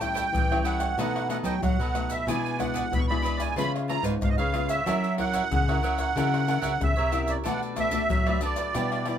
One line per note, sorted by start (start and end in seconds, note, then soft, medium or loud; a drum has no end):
0.00 0.30 A2 medium
0.00 0.44 G3 medium
0.00 0.44 C#4 medium
0.00 0.13 E4 soft
0.00 0.44 E4 medium
0.00 0.14 A4 soft
0.00 0.14 C#5 medium
0.00 0.68 G5 loud
0.00 0.14 G5 medium
0.00 pandeiro medium
0.00 tamborim medium
0.00 maracas medium
0.00 surdo soft
0.14 0.25 E4 medium
0.14 0.25 A4 medium
0.14 0.25 C#5 medium
0.14 0.25 G5 medium
0.14 pandeiro medium
0.14 maracas medium
0.14 surdo soft
0.33 0.95 E3 medium
0.33 pandeiro medium
0.33 high agogo medium
0.33 maracas medium
0.33 surdo loud
0.50 0.93 G3 medium
0.50 0.93 C#4 medium
0.50 0.94 E4 medium
0.50 0.64 A4 soft
0.50 0.65 C#5 soft
0.50 0.65 G5 soft
0.50 pandeiro soft
0.50 tamborim medium
0.50 high agogo medium
0.50 maracas soft
0.65 0.80 E4 medium
0.65 0.80 A4 medium
0.65 0.79 C#5 medium
0.65 1.28 F#5 loud
0.65 0.78 G5 medium
0.65 pandeiro medium
0.65 high agogo medium
0.65 maracas medium
0.80 0.97 A4 soft
0.80 0.96 C#5 soft
0.80 0.96 G5 soft
0.80 pandeiro medium
0.80 tamborim medium
0.80 maracas medium
0.80 surdo soft
0.98 1.60 B2 medium
0.98 1.25 A3 medium
0.98 1.28 D#4 medium
0.98 1.26 D#4 medium
0.98 1.26 F#4 medium
0.98 1.29 A4 medium
0.98 1.29 B4 medium
0.98 1.30 D#5 medium
0.98 pandeiro medium
0.98 tamborim medium
0.98 low agogo medium
0.98 maracas medium
0.98 surdo medium
1.16 pandeiro soft
1.16 tamborim medium
1.16 maracas soft
1.29 1.71 A3 medium
1.29 1.43 D#4 soft
1.29 1.72 D#4 medium
1.29 1.72 F#4 medium
1.29 1.43 A4 medium
1.29 1.43 B4 medium
1.29 1.44 D#5 medium
1.29 1.37 F#5 loud
1.29 pandeiro medium
1.29 tamborim medium
1.29 low agogo medium
1.29 maracas medium
1.44 1.59 F#3 loud
1.44 1.54 D#4 medium
1.44 1.55 A4 medium
1.44 1.55 B4 medium
1.44 1.55 D#5 medium
1.44 1.61 G5 medium
1.44 pandeiro medium
1.44 maracas medium
1.44 surdo soft
1.63 2.24 F#3 medium
1.63 2.14 F#5 loud
1.63 pandeiro medium
1.63 tamborim medium
1.63 maracas medium
1.63 surdo medium
1.79 2.21 B2 medium
1.79 1.94 A4 medium
1.79 1.94 B4 medium
1.79 1.94 D#5 medium
1.79 pandeiro soft
1.79 high agogo medium
1.79 maracas soft
1.94 2.24 A3 medium
1.94 2.10 D#4 soft
1.94 2.25 D#4 medium
1.94 2.25 F#4 medium
1.94 2.10 A4 medium
1.94 2.09 B4 medium
1.94 2.08 D#5 medium
1.94 pandeiro medium
1.94 tamborim medium
1.94 high agogo medium
1.94 maracas medium
2.09 2.26 A4 soft
2.09 2.26 B4 soft
2.09 2.25 D#5 medium
2.09 2.27 E5 medium
2.09 pandeiro medium
2.09 maracas medium
2.09 surdo soft
2.28 2.89 B2 medium
2.28 2.55 G#3 medium
2.28 2.55 D4 medium
2.28 2.58 E4 medium
2.28 2.55 E4 medium
2.28 2.58 G#4 medium
2.28 2.59 B4 medium
2.28 2.59 D5 medium
2.28 2.61 G#5 loud
2.28 pandeiro medium
2.28 tamborim medium
2.28 low agogo medium
2.28 maracas medium
2.28 surdo medium
2.46 pandeiro soft
2.46 maracas soft
2.59 3.03 G#3 medium
2.59 3.03 D4 medium
2.59 2.72 E4 medium
2.59 3.03 E4 medium
2.59 2.73 G#4 medium
2.59 2.74 B4 medium
2.59 2.74 D5 medium
2.59 2.93 F#5 medium
2.59 pandeiro medium
2.59 tamborim medium
2.59 maracas medium
2.59 surdo soft
2.74 2.84 E4 medium
2.74 2.84 G#4 medium
2.74 2.84 B4 medium
2.74 2.85 D5 medium
2.74 pandeiro medium
2.74 maracas medium
2.74 surdo soft
2.92 3.54 B2 medium
2.92 3.00 B5 loud
2.92 pandeiro medium
2.92 high agogo medium
2.92 maracas medium
2.92 surdo loud
2.99 3.06 C#6 loud
3.07 3.52 G#3 medium
3.07 3.52 D4 medium
3.07 3.53 E4 medium
3.07 3.22 G#4 soft
3.07 3.22 B4 soft
3.07 3.23 D5 soft
3.07 3.43 B5 loud
3.07 pandeiro soft
3.07 tamborim medium
3.07 high agogo medium
3.07 maracas soft
3.22 3.38 E4 medium
3.22 3.38 G#4 medium
3.22 3.37 B4 medium
3.22 3.36 D5 medium
3.22 pandeiro medium
3.22 high agogo medium
3.22 maracas medium
3.37 3.55 G#4 soft
3.37 3.55 B4 soft
3.37 3.54 D5 medium
3.37 3.55 G#5 loud
3.37 pandeiro medium
3.37 tamborim medium
3.37 maracas medium
3.37 surdo soft
3.56 4.19 C#3 medium
3.56 3.76 G#3 medium
3.56 3.76 B3 medium
3.56 3.87 F4 medium
3.56 3.77 F4 medium
3.56 3.88 B4 medium
3.56 3.88 C#5 medium
3.56 3.89 F5 medium
3.56 3.72 B5 loud
3.56 pandeiro medium
3.56 tamborim medium
3.56 low agogo medium
3.56 maracas medium
3.56 surdo medium
3.76 pandeiro soft
3.76 tamborim medium
3.76 maracas soft
3.88 4.49 G#3 medium
3.88 4.49 B3 medium
3.88 4.03 F4 medium
3.88 4.49 F4 medium
3.88 4.03 B4 medium
3.88 4.04 C#5 medium
3.88 4.04 F5 medium
3.88 4.04 A#5 loud
3.88 pandeiro medium
3.88 tamborim medium
3.88 low agogo medium
4.03 4.18 G#2 loud
4.03 4.14 F4 medium
4.03 4.14 B4 medium
4.03 4.14 C#5 medium
4.03 4.14 F5 medium
4.03 pandeiro medium
4.03 maracas medium
4.03 surdo soft
4.22 4.84 G#2 medium
4.22 4.29 F5 medium
4.22 pandeiro medium
4.22 tamborim medium
4.22 maracas medium
4.22 surdo loud
4.29 4.36 D#5 medium
4.37 4.79 C#3 medium
4.37 4.53 B4 medium
4.37 4.53 C#5 medium
4.37 4.69 F5 loud
4.37 4.53 F5 medium
4.37 pandeiro soft
4.37 high agogo medium
4.37 maracas soft
4.53 4.75 G#3 medium
4.53 4.75 B3 medium
4.53 4.68 F4 medium
4.53 4.75 F4 medium
4.53 4.69 B4 medium
4.53 4.68 C#5 medium
4.53 4.68 F5 medium
4.53 pandeiro medium
4.53 tamborim medium
4.53 high agogo medium
4.69 4.85 B4 soft
4.69 4.85 C#5 soft
4.69 5.15 E5 loud
4.69 4.85 F5 soft
4.69 pandeiro medium
4.69 maracas medium
4.69 surdo soft
4.86 5.48 F#3 medium
4.86 5.06 C#4 medium
4.86 5.06 E4 medium
4.86 5.17 F#4 medium
4.86 5.18 A#4 medium
4.86 5.06 A#4 medium
4.86 5.18 C#5 medium
4.86 5.19 E5 medium
4.86 pandeiro medium
4.86 tamborim medium
4.86 low agogo medium
4.86 maracas medium
4.86 surdo medium
5.04 pandeiro soft
5.04 maracas soft
5.18 5.62 C#4 medium
5.18 5.62 E4 medium
5.18 5.31 F#4 medium
5.18 5.32 A#4 medium
5.18 5.62 A#4 medium
5.18 5.32 C#5 medium
5.18 5.33 E5 medium
5.18 5.98 F#5 loud
5.18 pandeiro medium
5.18 tamborim medium
5.18 surdo soft
5.33 5.43 F#4 medium
5.33 5.43 A#4 medium
5.33 5.43 C#5 medium
5.33 5.44 E5 medium
5.33 pandeiro medium
5.33 maracas medium
5.33 surdo soft
5.52 6.13 C#3 medium
5.52 pandeiro medium
5.52 high agogo medium
5.52 maracas medium
5.52 surdo loud
5.68 6.12 C#4 medium
5.68 6.12 E4 medium
5.68 6.12 A#4 medium
5.68 5.82 A#4 soft
5.68 5.83 C#5 soft
5.68 5.83 E5 soft
5.68 pandeiro soft
5.68 tamborim medium
5.68 high agogo medium
5.68 maracas soft
5.83 5.98 F#4 medium
5.83 5.98 A#4 medium
5.83 5.97 C#5 medium
5.83 5.96 E5 medium
5.83 pandeiro medium
5.83 high agogo medium
5.98 6.15 A#4 soft
5.98 6.14 C#5 soft
5.98 6.14 E5 soft
5.98 6.83 F#5 loud
5.98 pandeiro medium
5.98 tamborim medium
5.98 maracas medium
5.98 surdo soft
6.16 6.57 C#3 loud
6.16 6.78 F#3 medium
6.16 6.43 C#4 medium
6.16 6.43 E4 medium
6.16 6.46 F#4 medium
6.16 6.44 A#4 medium
6.16 6.47 A#4 medium
6.16 6.47 C#5 medium
6.16 6.48 E5 medium
6.16 pandeiro medium
6.16 tamborim medium
6.16 low agogo medium
6.16 maracas medium
6.16 surdo medium
6.34 pandeiro soft
6.34 tamborim medium
6.34 maracas soft
6.47 6.90 C#4 medium
6.47 6.90 E4 medium
6.47 6.60 F#4 soft
6.47 6.61 A#4 medium
6.47 6.90 A#4 medium
6.47 6.61 C#5 soft
6.47 6.61 E5 medium
6.47 pandeiro medium
6.47 tamborim medium
6.47 low agogo medium
6.47 maracas medium
6.62 6.77 C#3 loud
6.62 6.72 F#4 medium
6.62 6.72 A#4 medium
6.62 6.72 C#5 medium
6.62 6.72 E5 medium
6.62 pandeiro medium
6.62 maracas medium
6.62 surdo soft
6.81 6.95 C#3 medium
6.81 7.32 E5 loud
6.81 pandeiro medium
6.81 tamborim medium
6.81 maracas medium
6.81 surdo loud
6.96 7.39 C3 medium
6.96 7.11 A#4 medium
6.96 7.12 C#5 medium
6.96 7.11 E5 medium
6.96 pandeiro soft
6.96 high agogo medium
6.96 maracas soft
7.12 7.42 C#4 medium
7.12 7.42 E4 medium
7.12 7.27 F#4 soft
7.12 7.27 A#4 medium
7.12 7.43 A#4 medium
7.12 7.26 C#5 medium
7.12 7.25 E5 medium
7.12 pandeiro medium
7.12 tamborim medium
7.12 high agogo medium
7.12 maracas medium
7.26 7.44 A#4 soft
7.26 7.43 C#5 soft
7.26 7.37 D5 medium
7.26 7.43 E5 soft
7.26 pandeiro medium
7.26 maracas medium
7.26 surdo soft
7.44 8.07 B2 medium
7.44 7.73 A3 medium
7.44 7.75 D4 medium
7.44 7.73 D4 medium
7.44 7.73 F#4 medium
7.44 7.75 A4 medium
7.44 7.76 B4 medium
7.44 7.77 D5 medium
7.44 7.61 F#5 loud
7.44 pandeiro medium
7.44 tamborim medium
7.44 low agogo medium
7.44 maracas medium
7.44 surdo medium
7.63 pandeiro soft
7.63 maracas soft
7.76 7.88 A3 medium
7.76 7.90 D4 medium
7.76 7.88 D4 medium
7.76 7.89 F#4 medium
7.76 7.90 A4 medium
7.76 7.90 B4 medium
7.76 7.91 D5 medium
7.76 8.39 E5 loud
7.76 pandeiro medium
7.76 tamborim medium
7.76 maracas medium
7.76 surdo soft
7.91 8.20 A3 medium
7.91 8.02 D4 medium
7.91 8.20 D4 medium
7.91 8.21 F#4 medium
7.91 8.02 A4 medium
7.91 8.02 B4 medium
7.91 8.02 D5 medium
7.91 pandeiro medium
7.91 maracas medium
7.91 surdo soft
8.10 8.72 F#3 medium
8.10 pandeiro medium
8.10 high agogo medium
8.10 maracas medium
8.10 surdo loud
8.27 8.70 A3 medium
8.27 8.71 D4 medium
8.27 8.71 F#4 medium
8.27 8.41 A4 soft
8.27 8.42 B4 soft
8.27 8.41 D5 soft
8.27 pandeiro soft
8.27 tamborim medium
8.27 high agogo medium
8.27 maracas soft
8.41 8.57 D4 medium
8.41 8.57 A4 medium
8.41 8.56 B4 medium
8.41 8.55 D5 medium
8.41 pandeiro medium
8.41 high agogo medium
8.41 maracas medium
8.45 9.08 D5 loud
8.56 8.73 A4 soft
8.56 8.73 B4 soft
8.56 8.73 D5 medium
8.56 pandeiro medium
8.56 tamborim medium
8.56 maracas medium
8.56 surdo soft
8.74 9.19 B2 medium
8.74 9.02 G3 medium
8.74 9.03 D4 medium
8.74 9.05 E4 medium
8.74 9.03 E4 medium
8.74 9.05 G4 medium
8.74 9.05 B4 medium
8.74 9.06 D5 medium
8.74 pandeiro medium
8.74 tamborim medium
8.74 low agogo medium
8.74 maracas medium
8.74 surdo medium
8.92 pandeiro soft
8.92 tamborim medium
8.92 maracas soft
9.06 9.19 G3 medium
9.06 9.19 D4 medium
9.06 9.19 E4 medium
9.06 9.19 G4 medium
9.06 9.19 B4 medium
9.06 9.19 D5 medium
9.06 9.16 D5 medium
9.06 pandeiro medium
9.06 tamborim medium
9.06 low agogo medium